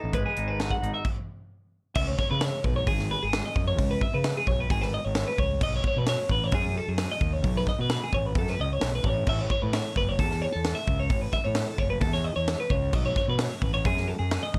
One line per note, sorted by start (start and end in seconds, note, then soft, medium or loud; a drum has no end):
0.00 0.12 A1 medium
0.00 0.11 E3 medium
0.00 0.11 D#4 medium
0.00 0.14 E4 medium
0.00 0.14 A4 medium
0.00 0.11 B4 medium
0.13 0.22 G#1 medium
0.13 1.02 G#3 medium
0.13 1.02 B4 medium
0.13 0.25 B4 medium
0.13 kick loud
0.13 closed hi-hat medium
0.26 0.48 G#4 medium
0.37 0.72 G#1 medium
0.37 0.81 D#4 medium
0.37 closed hi-hat medium
0.48 0.59 B4 medium
0.59 1.03 F#4 medium
0.59 0.71 G#4 medium
0.59 snare medium
0.59 closed hi-hat medium
0.71 0.94 F#5 medium
0.71 kick medium
0.82 0.91 G#1 medium
0.82 1.02 D#4 medium
0.82 closed hi-hat soft
0.94 1.05 E5 medium
1.05 kick medium
1.05 crash medium
1.95 2.14 C#2 medium
1.95 2.08 E5 medium
1.95 kick loud
1.95 crash loud
2.08 2.18 C#5 medium
2.19 2.30 C#5 medium
2.19 kick medium
2.19 snare soft
2.31 2.48 C#3 medium
2.31 2.42 B4 medium
2.41 2.65 C#5 medium
2.41 snare loud
2.41 open hi-hat medium
2.64 2.87 B1 medium
2.64 2.76 B4 medium
2.64 kick medium
2.76 2.88 C#5 medium
2.87 3.14 G#1 loud
2.87 3.11 G#4 medium
2.87 kick loud
2.87 open hi-hat medium
2.99 snare soft
3.11 3.22 B4 medium
3.23 3.40 G#1 medium
3.23 3.45 G#4 medium
3.33 snare loud
3.33 open hi-hat medium
3.46 3.67 D#5 medium
3.56 3.78 F#2 medium
3.56 kick medium
3.68 3.91 C#5 medium
3.78 3.96 C#2 loud
3.78 kick loud
3.78 open hi-hat medium
3.91 4.02 B4 medium
4.01 4.14 E5 medium
4.01 kick medium
4.14 4.31 C#3 medium
4.14 4.37 B4 medium
4.24 snare loud
4.24 open hi-hat medium
4.37 4.48 G#4 medium
4.47 4.70 B1 medium
4.47 4.59 C#5 medium
4.47 kick medium
4.60 4.71 B4 medium
4.70 4.97 G#1 loud
4.70 4.82 G#4 medium
4.70 kick loud
4.70 open hi-hat medium
4.82 4.93 B4 medium
4.82 snare soft
4.94 5.05 D#5 medium
5.05 5.23 G#1 medium
5.05 5.28 C#5 medium
5.15 snare loud
5.15 open hi-hat medium
5.28 5.39 B4 medium
5.38 5.62 C#2 loud
5.38 5.62 C#5 medium
5.38 kick medium
5.61 5.79 B1 loud
5.61 5.74 D#5 medium
5.61 kick loud
5.61 crash loud
5.76 5.86 C#5 medium
5.84 5.98 C#5 medium
5.84 kick loud
5.97 6.14 B2 medium
5.97 6.09 B4 medium
6.06 6.31 C#5 medium
6.06 snare loud
6.06 open hi-hat medium
6.29 6.52 A1 medium
6.29 6.44 B4 medium
6.29 kick medium
6.44 6.54 C#5 medium
6.52 6.79 F#2 loud
6.52 6.77 G#4 loud
6.52 kick loud
6.52 open hi-hat medium
6.78 6.89 A4 medium
6.88 7.05 F#2 medium
6.88 7.11 G#4 medium
6.98 snare loud
6.98 open hi-hat medium
7.12 7.33 D#5 medium
7.21 7.44 D#2 loud
7.21 kick medium
7.33 7.56 C#5 medium
7.44 7.62 B1 loud
7.44 kick loud
7.44 open hi-hat medium
7.57 7.68 B4 medium
7.67 7.80 D#5 medium
7.67 kick medium
7.67 snare soft
7.79 7.96 B2 medium
7.79 8.03 B4 medium
7.90 snare loud
7.90 open hi-hat medium
8.04 8.14 G#4 medium
8.13 8.37 A1 medium
8.13 8.26 C#5 medium
8.13 kick medium
8.26 8.37 B4 medium
8.35 8.53 F#2 loud
8.35 8.49 A4 medium
8.35 kick loud
8.35 open hi-hat medium
8.47 8.60 B4 medium
8.47 snare soft
8.59 8.80 C#2 medium
8.59 8.72 D#5 medium
8.73 8.95 C#5 medium
8.81 9.03 B1 loud
8.81 snare loud
8.81 open hi-hat medium
8.95 9.06 B4 medium
9.04 9.27 A1 medium
9.04 9.29 C#5 medium
9.04 kick medium
9.27 9.45 A1 loud
9.27 9.41 E5 medium
9.27 kick loud
9.27 crash loud
9.41 9.50 C#5 medium
9.50 9.62 C#5 medium
9.50 kick medium
9.62 9.80 A2 medium
9.62 9.73 B4 medium
9.73 9.96 C#5 medium
9.73 snare loud
9.73 open hi-hat medium
9.96 10.20 F#1 medium
9.96 10.09 B4 medium
9.96 kick medium
10.09 10.20 C#5 medium
10.19 10.45 E2 loud
10.19 10.42 A4 medium
10.19 kick loud
10.19 open hi-hat medium
10.31 snare soft
10.42 10.54 C#5 medium
10.53 10.72 E2 medium
10.53 10.76 A4 medium
10.64 snare loud
10.64 open hi-hat medium
10.75 10.99 E5 medium
10.87 11.10 C#2 medium
10.87 kick medium
11.00 11.21 C#5 medium
11.10 11.28 A1 loud
11.10 kick loud
11.10 open hi-hat medium
11.21 11.33 B4 medium
11.33 11.45 E5 medium
11.33 kick medium
11.33 snare soft
11.45 11.63 A2 medium
11.45 11.68 C#5 medium
11.55 snare loud
11.55 open hi-hat medium
11.68 11.79 A4 medium
11.78 12.03 F#1 medium
11.78 11.90 C#5 medium
11.78 kick medium
11.90 12.00 B4 medium
12.01 12.29 E2 loud
12.01 12.13 A4 medium
12.01 kick loud
12.01 open hi-hat medium
12.13 12.24 C#5 medium
12.13 snare soft
12.24 12.36 D#5 medium
12.36 12.54 E2 medium
12.36 12.60 C#5 medium
12.48 snare loud
12.48 open hi-hat medium
12.60 12.71 B4 medium
12.70 12.93 C#2 medium
12.70 12.94 C#5 medium
12.70 kick medium
12.93 13.11 B1 loud
12.93 13.05 D#5 medium
12.93 kick loud
12.93 crash loud
13.06 13.16 C#5 medium
13.16 13.29 C#5 medium
13.16 kick medium
13.16 snare soft
13.28 13.46 B2 medium
13.28 13.41 B4 medium
13.39 13.63 C#5 medium
13.39 snare loud
13.39 open hi-hat medium
13.62 13.85 A1 medium
13.62 13.73 B4 medium
13.62 kick medium
13.74 13.86 C#5 medium
13.85 14.12 F#2 loud
13.85 14.08 G#4 medium
13.85 kick loud
13.85 open hi-hat medium
13.97 snare soft
14.08 14.19 A4 medium
14.19 14.37 F#2 medium
14.19 14.43 G#4 medium
14.31 snare loud
14.31 open hi-hat medium
14.43 14.59 D#5 medium
14.54 14.59 D#2 loud
14.54 kick medium